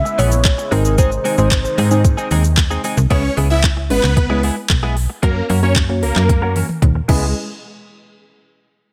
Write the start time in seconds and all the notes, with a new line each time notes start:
Already playing: C#3 G#3 B3 C#4 E4 B4 E5
0.05 muted clean electric guitar stroke, shaker
0.18 A#1 E3 B3 C#4 G#4 C#5, open hi-hat, shaker
0.32 muted clean electric guitar stroke, shaker
0.45 muted clean electric guitar stroke, kick, clap, closed hi-hat, shaker
0.58 muted clean electric guitar stroke, shaker
0.71 G#1 C3 D#3 G#3 C4 D#4 G#4 A#4 C5, open hi-hat, shaker
0.85 G#3 C4 D#4 G#4, shaker
0.98 G#3 C4 D#4 G#4 C5, kick, closed hi-hat, shaker
1.11 muted clean electric guitar stroke, shaker
1.24 G#3 C4 D#4 G#4, open hi-hat, shaker
1.38 G#1 G#3 C4 D#4 G#4 C5, shaker
1.51 kick, clap, closed hi-hat, shaker
1.64 muted clean electric guitar stroke, shaker
1.78 G#2 G#3 C4 D#4 G#4, open hi-hat, shaker
1.91 G#3 C4 D#4 G#4, shaker
2.04 muted clean electric guitar stroke, kick, closed hi-hat, shaker
2.17 G#3 C4 D#4 G#4, shaker
2.31 D#2 G#3 C4 D#4 G#4, open hi-hat, shaker
2.44 muted clean electric guitar stroke, shaker
2.57 muted clean electric guitar stroke, kick, clap, closed hi-hat, shaker
2.70 G#3 C4 D#4 G#4, shaker
2.84 G#3 C4 D#4 G#4, open hi-hat, shaker
2.97 C2, muted clean electric guitar stroke, shaker
3.10 C#2 G#3 B3 C#4 E4 G#4 B4 C#5, kick, closed hi-hat
3.24 muted clean electric guitar stroke
3.37 C#2 G#3 B3 E4 G#4, open hi-hat
3.50 G#3 B3 E4 G#4 E5
3.64 kick, clap, closed hi-hat
3.77 muted clean electric guitar stroke
3.90 G#1 G#3 B3 C#4 E4 B4, open hi-hat
4.03 C#2, muted clean electric guitar stroke, clap
4.17 muted clean electric guitar stroke, kick, closed hi-hat
4.30 G#3 B3 C#4 E4 G#4 B4
4.43 G#3 B3 E4 G#4, open hi-hat
4.57 muted clean electric guitar stroke
4.70 B1, muted clean electric guitar stroke, kick, clap, closed hi-hat
4.83 G#3 B3 E4 G#4
4.96 muted clean electric guitar stroke, open hi-hat
5.10 muted clean electric guitar stroke
5.23 F#2 A#3 C#4 F#4 A#4 C#5, kick, closed hi-hat
5.36 muted clean electric guitar stroke
5.49 F#2 A#3 C#4 F#4 A#4, open hi-hat
5.63 A#3 C#4 F#4 A#4 C#5
5.76 kick, clap, closed hi-hat
5.89 A#3 C#4 F#4 C#5, muted clean electric guitar stroke
6.03 C#2 A#3 A#4, open hi-hat
6.16 F#2, muted clean electric guitar stroke, clap
6.29 muted clean electric guitar stroke, kick, closed hi-hat, high tom
6.42 A#3 C#4 F#4 A#4
6.55 A#3 C#4 F#4 A#4, open hi-hat, mid tom
6.69 muted clean electric guitar stroke, mid tom
6.82 D#2, kick, closed hi-hat, mid tom
6.95 muted clean electric guitar stroke
7.08 C#2 G#3 B3 C#4 E4 G#4 B4, kick, crash